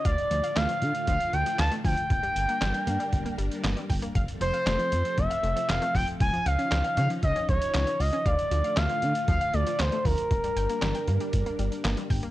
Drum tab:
HH |xxxxxxxxxxxxxxox|xxxxxxxxxxxxxxox|xxxxxxxxxxxxxxox|xxxxxxxxxxxxxxox|
CP |----x-------x---|----x-------x---|----x-------x---|----x-------x---|
SD |----o-------o---|----o-------o---|----o-------o---|----o-------o---|
BD |o-------o-----o-|o-------o-----o-|o-------o-----o-|o-------o-o-----|

HH |xxxxxxxxxxxxxxox|xxxxxxxxxxxxxxox|
CP |----x-------x---|----x-------x---|
SD |----o-------o---|----o-------o---|
BD |o-------o-----o-|o-------o-----o-|